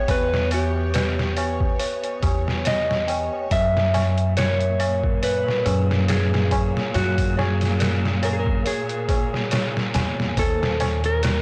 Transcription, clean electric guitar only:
0.00 0.10 C#5 loud
0.11 0.49 B4 loud
0.54 2.20 G4 medium
2.67 3.52 D#5 loud
3.52 4.37 E5 loud
4.37 5.23 C#5 loud
5.23 6.05 B4 medium
6.09 6.91 G#4 medium
6.95 7.35 F#4 medium
7.39 8.24 G#4 loud
8.25 8.32 A#4 medium
8.33 8.39 G#4 medium
8.40 8.67 A#4 medium
8.67 9.48 G#4 medium
10.39 11.05 A4 loud
11.06 11.42 A#4 loud

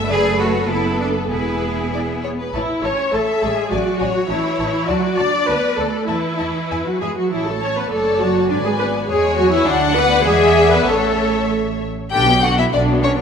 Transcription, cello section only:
0.10 0.39 G#4 medium
0.40 0.69 F#4 medium
0.70 1.00 E4 medium
1.00 1.08 D4 medium
1.30 2.22 E4 medium
2.54 2.62 E3 soft
2.84 3.13 C#4 soft
3.13 3.21 A3 medium
3.43 3.71 G#3 medium
3.72 4.30 F#3 medium
4.30 4.88 E3 medium
4.89 5.18 F#3 medium
5.19 5.48 D4 medium
5.49 5.79 B3 medium
5.79 6.09 A3 medium
6.09 6.86 E3 soft
6.87 7.02 F#3 soft
7.02 7.17 G#3 soft
7.17 7.32 F#3 soft
7.32 7.47 E3 medium
7.47 7.62 A3 soft
7.62 7.68 C#4 soft
7.77 7.91 B3 soft
7.92 8.21 A3 medium
8.22 8.51 F#3 medium
8.51 8.66 D3 medium
8.66 8.72 G#3 medium
8.81 9.09 B3 medium
9.10 9.38 G#3 medium
9.39 9.53 F#3 medium
9.53 9.59 E3 medium
9.68 9.97 D3 medium
9.97 10.27 B3 medium
10.27 10.72 G#3 medium
10.74 10.89 B3 medium
10.89 11.51 A3 medium
12.13 12.66 B2 medium
12.73 13.21 B2 medium

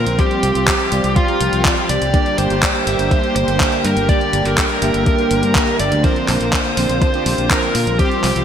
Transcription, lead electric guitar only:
0.00 0.20 A#4 loud
0.19 1.16 G4 loud
1.17 1.92 F4 medium
1.90 2.38 D5 loud
2.38 3.10 C5 loud
3.12 3.35 C5 loud
3.36 3.86 C5 loud
3.85 4.07 A#4 loud
4.09 4.47 D5 loud
4.46 4.57 A#4 loud
4.58 5.76 A#4 loud
5.80 6.04 D5 loud
6.04 6.27 C5 loud
6.29 7.01 C5 loud
7.02 7.47 C5 loud
7.51 7.99 A#4 loud
8.00 8.45 G4 medium

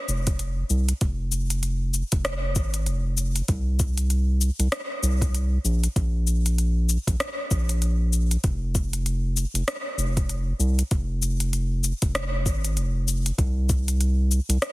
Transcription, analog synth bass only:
0.08 0.64 F1 medium
0.70 0.93 C2 medium
1.01 2.03 F1 loud
2.12 2.57 F1 medium
2.56 2.88 G#1 medium
2.86 3.42 F1 loud
3.49 4.50 C2 medium
4.59 4.68 C2 medium
5.03 5.58 C2 medium
5.65 5.88 A#1 medium
5.96 6.98 A#1 medium
7.07 7.16 A#1 medium
7.51 8.37 A#1 medium
8.44 9.45 F1 loud
9.54 9.63 F1 medium
9.98 10.53 F1 medium
10.59 10.83 C2 loud
10.91 11.93 F1 loud
12.02 12.47 F1 medium
12.46 12.77 G#1 medium
12.76 13.31 F1 loud
13.38 14.40 C2 loud
14.49 14.58 C2 medium

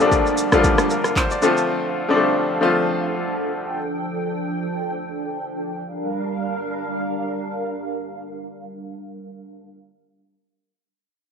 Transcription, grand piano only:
0.00 0.52 D3 medium
0.00 0.53 F3 medium
0.00 0.53 G3 medium
0.00 0.54 A3 medium
0.00 0.08 A#3 medium
0.00 0.42 D4 medium
0.00 0.54 F4 medium
0.00 1.44 G4 loud
0.08 0.45 A#3 medium
0.52 1.35 D3 medium
0.52 1.35 F3 medium
0.52 1.36 G3 medium
0.52 0.59 A3 medium
0.52 1.36 F4 loud
0.60 1.39 A#3 medium
0.91 1.15 A#4 medium
1.17 1.30 C5 medium
1.31 1.56 D5 medium
1.42 1.94 D3 medium
1.42 1.95 F3 medium
1.42 1.95 A3 medium
1.42 1.95 C4 medium
1.42 1.95 F4 loud
2.09 2.49 D3 medium
2.09 2.50 F3 medium
2.09 2.15 G3 medium
2.09 2.50 C4 medium
2.09 2.50 D4 medium
2.16 2.53 A3 medium
2.61 3.44 D3 medium
2.61 3.44 F3 medium
2.61 3.44 A3 medium
2.61 3.45 C4 medium
2.61 3.45 F4 loud

